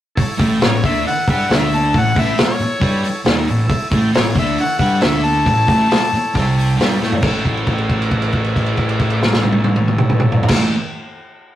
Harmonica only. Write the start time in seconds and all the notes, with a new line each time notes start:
0.64 C#5
0.85 E5
1.07 F#5
1.32 F#5
1.55 E5
1.75 A5
1.99 F#5
2.20 E5
2.44 C#5
4.16 C#5
4.39 E5
4.60 F#5
4.79 F#5
5.02 E5
5.24 A5